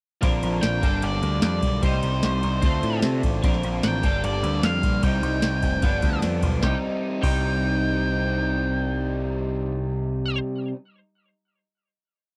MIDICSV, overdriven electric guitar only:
0, 0, Header, 1, 2, 480
1, 0, Start_track
1, 0, Tempo, 400000
1, 272, Time_signature, 4, 2, 24, 8
1, 14834, End_track
2, 0, Start_track
2, 0, Title_t, "Overdriven electric guitar"
2, 0, Program_c, 0, 29
2, 255, Note_on_c, 0, 46, 86
2, 262, Note_on_c, 0, 50, 77
2, 271, Note_on_c, 0, 53, 82
2, 273, Note_on_c, 0, 58, 94
2, 281, Note_on_c, 0, 62, 100
2, 963, Note_off_c, 0, 50, 0
2, 966, Note_off_c, 0, 46, 0
2, 970, Note_on_c, 0, 43, 86
2, 976, Note_off_c, 0, 53, 0
2, 978, Note_off_c, 0, 58, 0
2, 978, Note_on_c, 0, 50, 87
2, 981, Note_on_c, 0, 55, 90
2, 986, Note_off_c, 0, 62, 0
2, 990, Note_on_c, 0, 62, 92
2, 992, Note_on_c, 0, 58, 87
2, 2167, Note_off_c, 0, 43, 0
2, 2171, Note_off_c, 0, 50, 0
2, 2172, Note_off_c, 0, 55, 0
2, 2178, Note_off_c, 0, 58, 0
2, 2180, Note_on_c, 0, 48, 80
2, 2188, Note_on_c, 0, 55, 83
2, 2196, Note_off_c, 0, 62, 0
2, 2196, Note_on_c, 0, 60, 91
2, 2201, Note_on_c, 0, 63, 95
2, 3132, Note_off_c, 0, 48, 0
2, 3136, Note_off_c, 0, 55, 0
2, 3141, Note_off_c, 0, 60, 0
2, 3141, Note_on_c, 0, 50, 83
2, 3143, Note_off_c, 0, 63, 0
2, 3153, Note_on_c, 0, 53, 82
2, 3166, Note_on_c, 0, 57, 99
2, 3169, Note_on_c, 0, 62, 109
2, 4094, Note_off_c, 0, 50, 0
2, 4100, Note_off_c, 0, 53, 0
2, 4103, Note_on_c, 0, 46, 97
2, 4106, Note_off_c, 0, 57, 0
2, 4110, Note_on_c, 0, 50, 79
2, 4113, Note_on_c, 0, 53, 89
2, 4121, Note_off_c, 0, 62, 0
2, 4124, Note_on_c, 0, 58, 94
2, 4126, Note_on_c, 0, 62, 94
2, 4815, Note_off_c, 0, 46, 0
2, 4816, Note_off_c, 0, 50, 0
2, 4821, Note_off_c, 0, 53, 0
2, 4825, Note_on_c, 0, 43, 86
2, 4826, Note_off_c, 0, 58, 0
2, 4830, Note_on_c, 0, 50, 97
2, 4838, Note_on_c, 0, 55, 96
2, 4845, Note_off_c, 0, 62, 0
2, 4847, Note_on_c, 0, 58, 97
2, 4850, Note_on_c, 0, 62, 95
2, 6018, Note_off_c, 0, 43, 0
2, 6020, Note_off_c, 0, 50, 0
2, 6028, Note_off_c, 0, 58, 0
2, 6029, Note_on_c, 0, 48, 78
2, 6037, Note_off_c, 0, 55, 0
2, 6042, Note_on_c, 0, 55, 85
2, 6050, Note_off_c, 0, 62, 0
2, 6050, Note_on_c, 0, 60, 90
2, 6055, Note_on_c, 0, 63, 101
2, 6980, Note_off_c, 0, 48, 0
2, 6986, Note_off_c, 0, 55, 0
2, 6990, Note_off_c, 0, 60, 0
2, 6992, Note_on_c, 0, 43, 87
2, 6993, Note_off_c, 0, 63, 0
2, 6996, Note_on_c, 0, 50, 87
2, 7001, Note_on_c, 0, 53, 89
2, 7008, Note_on_c, 0, 59, 94
2, 7015, Note_on_c, 0, 62, 107
2, 7942, Note_off_c, 0, 43, 0
2, 7942, Note_off_c, 0, 50, 0
2, 7946, Note_off_c, 0, 53, 0
2, 7947, Note_on_c, 0, 48, 89
2, 7950, Note_off_c, 0, 59, 0
2, 7953, Note_off_c, 0, 62, 0
2, 7967, Note_on_c, 0, 55, 86
2, 7980, Note_on_c, 0, 60, 100
2, 7993, Note_on_c, 0, 63, 94
2, 8657, Note_off_c, 0, 48, 0
2, 8662, Note_on_c, 0, 48, 95
2, 8673, Note_off_c, 0, 55, 0
2, 8677, Note_on_c, 0, 55, 90
2, 8685, Note_off_c, 0, 60, 0
2, 8690, Note_on_c, 0, 60, 106
2, 8704, Note_off_c, 0, 63, 0
2, 8709, Note_on_c, 0, 63, 101
2, 12862, Note_off_c, 0, 48, 0
2, 12877, Note_off_c, 0, 55, 0
2, 12890, Note_off_c, 0, 60, 0
2, 12909, Note_off_c, 0, 63, 0
2, 14834, End_track
0, 0, End_of_file